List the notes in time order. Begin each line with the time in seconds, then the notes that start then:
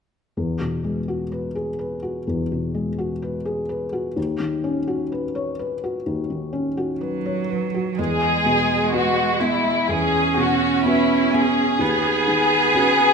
0.37 E2
0.60 B2
0.84 G#3
1.08 F#4
1.32 B4
1.55 G#4
1.79 B4
2.02 F#4
2.27 E2
2.52 B2
2.74 G#3
2.98 F#4
3.22 B4
3.45 G#4
3.69 B4
3.93 F#4
4.16 D#2
4.40 D#3
4.64 C#4
4.88 F#4
5.12 B4
5.35 C#5
5.59 B4
5.84 F#4
6.06 D#2
6.30 D#3
6.53 C#4
6.77 F#4
6.99 F#3 B4
7.26 C#5
7.50 B4
7.74 F#4
7.98 E2 G#3 G#4
8.46 B2
8.92 B3 F#4 B4
9.40 B3 E4
9.88 E2 C#4 G#4
10.37 B2 F#4
10.85 B3 E4 F#4 B4
11.33 B3 G#4
11.79 D#2 B3
12.27 D#3
12.74 C#4 F#4 B4